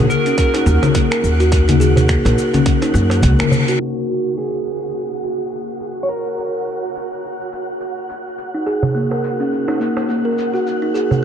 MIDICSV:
0, 0, Header, 1, 7, 480
1, 0, Start_track
1, 0, Tempo, 571429
1, 1273, Time_signature, 4, 2, 24, 8
1, 9445, End_track
2, 0, Start_track
2, 0, Title_t, "Synth texture"
2, 0, Program_c, 0, 99
2, 0, Note_on_c, 0, 66, 75
2, 0, Note_on_c, 0, 78, 80
2, 3177, Note_off_c, 0, 66, 0
2, 3182, Note_off_c, 0, 78, 0
2, 3187, Note_on_c, 0, 66, 72
2, 3192, Note_on_c, 0, 78, 72
2, 9445, Note_off_c, 0, 66, 0
2, 9445, Note_off_c, 0, 78, 0
2, 9445, End_track
3, 0, Start_track
3, 0, Title_t, "Electric slide guitar"
3, 0, Program_c, 1, 29
3, 83, Note_on_c, 1, 70, 98
3, 302, Note_off_c, 1, 70, 0
3, 320, Note_on_c, 1, 70, 96
3, 2683, Note_off_c, 1, 70, 0
3, 3192, Note_on_c, 1, 66, 76
3, 3673, Note_off_c, 1, 66, 0
3, 3676, Note_on_c, 1, 68, 76
3, 5065, Note_on_c, 1, 73, 73
3, 5107, Note_off_c, 1, 68, 0
3, 5114, Note_off_c, 1, 73, 0
3, 5114, Note_on_c, 1, 70, 96
3, 6760, Note_off_c, 1, 70, 0
3, 9445, End_track
4, 0, Start_track
4, 0, Title_t, "Kalimba"
4, 0, Program_c, 2, 108
4, 220, Note_on_c, 2, 61, 71
4, 443, Note_off_c, 2, 61, 0
4, 457, Note_on_c, 2, 63, 95
4, 550, Note_off_c, 2, 63, 0
4, 556, Note_on_c, 2, 58, 77
4, 635, Note_off_c, 2, 58, 0
4, 793, Note_on_c, 2, 58, 76
4, 926, Note_off_c, 2, 58, 0
4, 934, Note_on_c, 2, 70, 78
4, 1029, Note_off_c, 2, 70, 0
4, 1175, Note_on_c, 2, 66, 74
4, 1400, Note_off_c, 2, 66, 0
4, 1411, Note_on_c, 2, 63, 78
4, 1507, Note_off_c, 2, 63, 0
4, 1512, Note_on_c, 2, 68, 79
4, 1743, Note_off_c, 2, 68, 0
4, 1750, Note_on_c, 2, 58, 84
4, 1884, Note_off_c, 2, 58, 0
4, 1893, Note_on_c, 2, 70, 74
4, 1988, Note_off_c, 2, 70, 0
4, 2130, Note_on_c, 2, 61, 74
4, 2357, Note_off_c, 2, 61, 0
4, 2368, Note_on_c, 2, 63, 91
4, 2466, Note_off_c, 2, 63, 0
4, 2468, Note_on_c, 2, 58, 76
4, 2550, Note_off_c, 2, 58, 0
4, 2709, Note_on_c, 2, 58, 84
4, 2844, Note_off_c, 2, 58, 0
4, 2848, Note_on_c, 2, 70, 80
4, 2946, Note_off_c, 2, 70, 0
4, 3091, Note_on_c, 2, 66, 73
4, 3193, Note_off_c, 2, 66, 0
4, 7176, Note_on_c, 2, 63, 67
4, 7270, Note_off_c, 2, 63, 0
4, 7277, Note_on_c, 2, 68, 70
4, 7505, Note_off_c, 2, 68, 0
4, 7515, Note_on_c, 2, 58, 73
4, 7647, Note_off_c, 2, 58, 0
4, 7654, Note_on_c, 2, 70, 66
4, 7749, Note_off_c, 2, 70, 0
4, 7895, Note_on_c, 2, 61, 66
4, 8120, Note_off_c, 2, 61, 0
4, 8132, Note_on_c, 2, 63, 85
4, 8228, Note_off_c, 2, 63, 0
4, 8231, Note_on_c, 2, 58, 67
4, 8312, Note_off_c, 2, 58, 0
4, 8474, Note_on_c, 2, 58, 76
4, 8606, Note_off_c, 2, 58, 0
4, 8611, Note_on_c, 2, 70, 72
4, 8707, Note_off_c, 2, 70, 0
4, 8850, Note_on_c, 2, 66, 65
4, 9078, Note_off_c, 2, 66, 0
4, 9090, Note_on_c, 2, 63, 69
4, 9187, Note_off_c, 2, 63, 0
4, 9192, Note_on_c, 2, 68, 67
4, 9423, Note_off_c, 2, 68, 0
4, 9445, End_track
5, 0, Start_track
5, 0, Title_t, "Upright bass"
5, 0, Program_c, 3, 32
5, 554, Note_on_c, 3, 39, 92
5, 640, Note_off_c, 3, 39, 0
5, 1037, Note_on_c, 3, 39, 74
5, 1809, Note_off_c, 3, 39, 0
5, 1889, Note_on_c, 3, 34, 95
5, 1953, Note_off_c, 3, 34, 0
5, 2468, Note_on_c, 3, 42, 93
5, 2710, Note_on_c, 3, 37, 93
5, 2723, Note_off_c, 3, 42, 0
5, 2798, Note_off_c, 3, 37, 0
5, 2848, Note_on_c, 3, 39, 83
5, 2912, Note_off_c, 3, 39, 0
5, 9445, End_track
6, 0, Start_track
6, 0, Title_t, "Darbuka"
6, 452, Note_on_c, 9, 63, 80
6, 462, Note_on_c, 9, 62, 65
6, 536, Note_off_c, 9, 63, 0
6, 546, Note_off_c, 9, 62, 0
6, 694, Note_on_c, 9, 63, 85
6, 778, Note_off_c, 9, 63, 0
6, 1647, Note_on_c, 9, 62, 60
6, 1651, Note_on_c, 9, 64, 93
6, 1731, Note_off_c, 9, 62, 0
6, 1735, Note_off_c, 9, 64, 0
6, 1896, Note_on_c, 9, 63, 88
6, 1980, Note_off_c, 9, 63, 0
6, 2369, Note_on_c, 9, 63, 77
6, 2453, Note_off_c, 9, 63, 0
6, 2471, Note_on_c, 9, 63, 33
6, 2555, Note_off_c, 9, 63, 0
6, 2603, Note_on_c, 9, 63, 87
6, 2687, Note_off_c, 9, 63, 0
6, 2703, Note_on_c, 9, 64, 84
6, 2787, Note_off_c, 9, 64, 0
6, 2851, Note_on_c, 9, 62, 69
6, 2935, Note_off_c, 9, 62, 0
6, 2951, Note_on_c, 9, 64, 94
6, 2953, Note_on_c, 9, 63, 37
6, 3035, Note_off_c, 9, 64, 0
6, 3037, Note_off_c, 9, 63, 0
6, 7414, Note_on_c, 9, 64, 103
6, 7416, Note_on_c, 9, 62, 49
6, 7498, Note_off_c, 9, 64, 0
6, 7500, Note_off_c, 9, 62, 0
6, 7655, Note_on_c, 9, 63, 73
6, 7739, Note_off_c, 9, 63, 0
6, 8130, Note_on_c, 9, 62, 57
6, 8132, Note_on_c, 9, 63, 78
6, 8214, Note_off_c, 9, 62, 0
6, 8216, Note_off_c, 9, 63, 0
6, 8372, Note_on_c, 9, 63, 82
6, 8456, Note_off_c, 9, 63, 0
6, 9331, Note_on_c, 9, 62, 50
6, 9332, Note_on_c, 9, 64, 89
6, 9415, Note_off_c, 9, 62, 0
6, 9416, Note_off_c, 9, 64, 0
6, 9445, End_track
7, 0, Start_track
7, 0, Title_t, "Drums"
7, 85, Note_on_c, 9, 82, 74
7, 169, Note_off_c, 9, 82, 0
7, 218, Note_on_c, 9, 42, 31
7, 222, Note_on_c, 9, 82, 32
7, 302, Note_off_c, 9, 42, 0
7, 306, Note_off_c, 9, 82, 0
7, 317, Note_on_c, 9, 36, 92
7, 318, Note_on_c, 9, 42, 64
7, 322, Note_on_c, 9, 82, 43
7, 401, Note_off_c, 9, 36, 0
7, 402, Note_off_c, 9, 42, 0
7, 406, Note_off_c, 9, 82, 0
7, 458, Note_on_c, 9, 42, 46
7, 461, Note_on_c, 9, 82, 28
7, 542, Note_off_c, 9, 42, 0
7, 545, Note_off_c, 9, 82, 0
7, 561, Note_on_c, 9, 82, 72
7, 645, Note_off_c, 9, 82, 0
7, 696, Note_on_c, 9, 42, 32
7, 696, Note_on_c, 9, 64, 76
7, 700, Note_on_c, 9, 82, 33
7, 780, Note_off_c, 9, 42, 0
7, 780, Note_off_c, 9, 64, 0
7, 784, Note_off_c, 9, 82, 0
7, 796, Note_on_c, 9, 36, 93
7, 797, Note_on_c, 9, 42, 68
7, 801, Note_on_c, 9, 82, 41
7, 880, Note_off_c, 9, 36, 0
7, 881, Note_off_c, 9, 42, 0
7, 885, Note_off_c, 9, 82, 0
7, 939, Note_on_c, 9, 26, 79
7, 939, Note_on_c, 9, 42, 45
7, 1023, Note_off_c, 9, 26, 0
7, 1023, Note_off_c, 9, 42, 0
7, 1041, Note_on_c, 9, 82, 72
7, 1125, Note_off_c, 9, 82, 0
7, 1178, Note_on_c, 9, 42, 31
7, 1182, Note_on_c, 9, 82, 31
7, 1262, Note_off_c, 9, 42, 0
7, 1266, Note_off_c, 9, 82, 0
7, 1276, Note_on_c, 9, 36, 105
7, 1279, Note_on_c, 9, 42, 69
7, 1283, Note_on_c, 9, 82, 44
7, 1360, Note_off_c, 9, 36, 0
7, 1363, Note_off_c, 9, 42, 0
7, 1367, Note_off_c, 9, 82, 0
7, 1417, Note_on_c, 9, 42, 49
7, 1417, Note_on_c, 9, 64, 83
7, 1421, Note_on_c, 9, 82, 33
7, 1501, Note_off_c, 9, 42, 0
7, 1501, Note_off_c, 9, 64, 0
7, 1505, Note_off_c, 9, 82, 0
7, 1520, Note_on_c, 9, 82, 77
7, 1604, Note_off_c, 9, 82, 0
7, 1656, Note_on_c, 9, 42, 30
7, 1660, Note_on_c, 9, 82, 31
7, 1740, Note_off_c, 9, 42, 0
7, 1744, Note_off_c, 9, 82, 0
7, 1755, Note_on_c, 9, 36, 98
7, 1757, Note_on_c, 9, 26, 69
7, 1757, Note_on_c, 9, 42, 61
7, 1761, Note_on_c, 9, 82, 37
7, 1839, Note_off_c, 9, 36, 0
7, 1841, Note_off_c, 9, 26, 0
7, 1841, Note_off_c, 9, 42, 0
7, 1845, Note_off_c, 9, 82, 0
7, 1899, Note_on_c, 9, 42, 43
7, 1903, Note_on_c, 9, 82, 29
7, 1983, Note_off_c, 9, 42, 0
7, 1987, Note_off_c, 9, 82, 0
7, 2001, Note_on_c, 9, 82, 74
7, 2085, Note_off_c, 9, 82, 0
7, 2135, Note_on_c, 9, 42, 32
7, 2135, Note_on_c, 9, 64, 82
7, 2139, Note_on_c, 9, 82, 31
7, 2219, Note_off_c, 9, 42, 0
7, 2219, Note_off_c, 9, 64, 0
7, 2223, Note_off_c, 9, 82, 0
7, 2233, Note_on_c, 9, 42, 62
7, 2234, Note_on_c, 9, 36, 97
7, 2237, Note_on_c, 9, 82, 38
7, 2317, Note_off_c, 9, 42, 0
7, 2318, Note_off_c, 9, 36, 0
7, 2321, Note_off_c, 9, 82, 0
7, 2372, Note_on_c, 9, 42, 47
7, 2375, Note_on_c, 9, 82, 29
7, 2456, Note_off_c, 9, 42, 0
7, 2459, Note_off_c, 9, 82, 0
7, 2478, Note_on_c, 9, 82, 71
7, 2562, Note_off_c, 9, 82, 0
7, 2614, Note_on_c, 9, 42, 33
7, 2618, Note_on_c, 9, 82, 31
7, 2698, Note_off_c, 9, 42, 0
7, 2702, Note_off_c, 9, 82, 0
7, 2713, Note_on_c, 9, 36, 86
7, 2715, Note_on_c, 9, 42, 69
7, 2719, Note_on_c, 9, 82, 41
7, 2797, Note_off_c, 9, 36, 0
7, 2799, Note_off_c, 9, 42, 0
7, 2803, Note_off_c, 9, 82, 0
7, 2855, Note_on_c, 9, 26, 80
7, 2855, Note_on_c, 9, 42, 45
7, 2855, Note_on_c, 9, 64, 85
7, 2859, Note_on_c, 9, 82, 32
7, 2939, Note_off_c, 9, 26, 0
7, 2939, Note_off_c, 9, 42, 0
7, 2939, Note_off_c, 9, 64, 0
7, 2943, Note_off_c, 9, 82, 0
7, 2959, Note_on_c, 9, 82, 69
7, 3043, Note_off_c, 9, 82, 0
7, 3094, Note_on_c, 9, 42, 32
7, 3097, Note_on_c, 9, 82, 33
7, 3178, Note_off_c, 9, 42, 0
7, 3181, Note_off_c, 9, 82, 0
7, 3436, Note_on_c, 9, 82, 60
7, 3520, Note_off_c, 9, 82, 0
7, 3577, Note_on_c, 9, 82, 27
7, 3661, Note_off_c, 9, 82, 0
7, 3674, Note_on_c, 9, 82, 35
7, 3758, Note_off_c, 9, 82, 0
7, 3814, Note_on_c, 9, 82, 27
7, 3898, Note_off_c, 9, 82, 0
7, 3914, Note_on_c, 9, 82, 62
7, 3998, Note_off_c, 9, 82, 0
7, 4055, Note_on_c, 9, 82, 31
7, 4139, Note_off_c, 9, 82, 0
7, 4155, Note_on_c, 9, 82, 37
7, 4239, Note_off_c, 9, 82, 0
7, 4295, Note_on_c, 9, 82, 28
7, 4379, Note_off_c, 9, 82, 0
7, 4392, Note_on_c, 9, 82, 67
7, 4476, Note_off_c, 9, 82, 0
7, 4532, Note_on_c, 9, 82, 28
7, 4616, Note_off_c, 9, 82, 0
7, 4633, Note_on_c, 9, 82, 37
7, 4717, Note_off_c, 9, 82, 0
7, 4873, Note_on_c, 9, 82, 63
7, 4957, Note_off_c, 9, 82, 0
7, 5013, Note_on_c, 9, 82, 28
7, 5097, Note_off_c, 9, 82, 0
7, 5117, Note_on_c, 9, 82, 41
7, 5201, Note_off_c, 9, 82, 0
7, 5357, Note_on_c, 9, 82, 71
7, 5441, Note_off_c, 9, 82, 0
7, 5498, Note_on_c, 9, 82, 28
7, 5582, Note_off_c, 9, 82, 0
7, 5597, Note_on_c, 9, 82, 37
7, 5681, Note_off_c, 9, 82, 0
7, 5737, Note_on_c, 9, 82, 25
7, 5821, Note_off_c, 9, 82, 0
7, 5838, Note_on_c, 9, 82, 64
7, 5922, Note_off_c, 9, 82, 0
7, 5976, Note_on_c, 9, 82, 30
7, 6060, Note_off_c, 9, 82, 0
7, 6078, Note_on_c, 9, 82, 39
7, 6162, Note_off_c, 9, 82, 0
7, 6217, Note_on_c, 9, 82, 28
7, 6301, Note_off_c, 9, 82, 0
7, 6317, Note_on_c, 9, 82, 70
7, 6401, Note_off_c, 9, 82, 0
7, 6456, Note_on_c, 9, 82, 29
7, 6540, Note_off_c, 9, 82, 0
7, 6556, Note_on_c, 9, 82, 40
7, 6640, Note_off_c, 9, 82, 0
7, 6797, Note_on_c, 9, 82, 67
7, 6881, Note_off_c, 9, 82, 0
7, 6940, Note_on_c, 9, 82, 29
7, 7024, Note_off_c, 9, 82, 0
7, 7040, Note_on_c, 9, 82, 39
7, 7124, Note_off_c, 9, 82, 0
7, 7278, Note_on_c, 9, 82, 72
7, 7362, Note_off_c, 9, 82, 0
7, 7420, Note_on_c, 9, 82, 29
7, 7504, Note_off_c, 9, 82, 0
7, 7520, Note_on_c, 9, 82, 37
7, 7604, Note_off_c, 9, 82, 0
7, 7661, Note_on_c, 9, 82, 28
7, 7745, Note_off_c, 9, 82, 0
7, 7759, Note_on_c, 9, 82, 71
7, 7843, Note_off_c, 9, 82, 0
7, 7900, Note_on_c, 9, 82, 31
7, 7984, Note_off_c, 9, 82, 0
7, 8000, Note_on_c, 9, 82, 40
7, 8084, Note_off_c, 9, 82, 0
7, 8142, Note_on_c, 9, 82, 28
7, 8226, Note_off_c, 9, 82, 0
7, 8240, Note_on_c, 9, 82, 70
7, 8324, Note_off_c, 9, 82, 0
7, 8379, Note_on_c, 9, 82, 29
7, 8463, Note_off_c, 9, 82, 0
7, 8481, Note_on_c, 9, 82, 42
7, 8565, Note_off_c, 9, 82, 0
7, 8720, Note_on_c, 9, 82, 70
7, 8804, Note_off_c, 9, 82, 0
7, 8860, Note_on_c, 9, 82, 31
7, 8944, Note_off_c, 9, 82, 0
7, 8960, Note_on_c, 9, 82, 42
7, 9044, Note_off_c, 9, 82, 0
7, 9199, Note_on_c, 9, 82, 67
7, 9283, Note_off_c, 9, 82, 0
7, 9339, Note_on_c, 9, 82, 29
7, 9423, Note_off_c, 9, 82, 0
7, 9445, End_track
0, 0, End_of_file